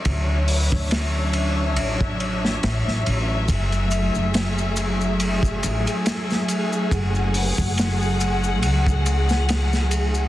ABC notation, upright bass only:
X:1
M:4/4
L:1/16
Q:"Swing 16ths" 1/4=70
K:F#m
V:1 name="Upright bass" clef=bass
D,,3 D,,4- D,, A,,,4 A,,, A,,, A,,,2 | F,,,3 F,,,6- F,,, A,,, z4 z | F,,,3 F,,,4- F,,, C,,8 |]